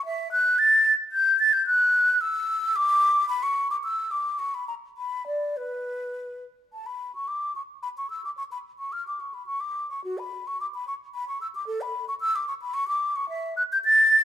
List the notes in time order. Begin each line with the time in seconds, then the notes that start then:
0.05 E5
0.32 F#6
0.59 A6
1.12 G6
1.39 A6
1.53 G6
1.67 F#6
2.21 E6
2.76 D6
3.29 B5
3.43 C#6
3.71 D6
3.84 E6
4.11 D6
4.39 C#6
4.54 B5
4.68 A#5
4.97 B5
5.27 D5
5.57 B4
6.73 A5
6.86 B5
7.15 C#6
7.28 D6
7.55 C#6
7.83 B5
7.98 C#6
8.10 E6
8.25 D6
8.37 C#6
8.52 B5
8.79 C#6
8.93 F6
9.07 D6
9.20 C#6
9.34 B5
9.46 C#6
9.60 D6
9.90 C#6
10.04 F#4
10.18 B5
10.47 C#6
10.61 D6
10.74 B5
10.88 C#6
11.15 B5
11.29 C#6
11.41 E6
11.55 D6
11.67 A4
11.81 B5
12.08 C#6
12.21 E6
12.36 D6
12.48 C#6
12.62 B5
12.74 C#6
12.88 D6
13.16 C#6
13.29 E5
13.57 F#6
13.72 G6
13.85 A6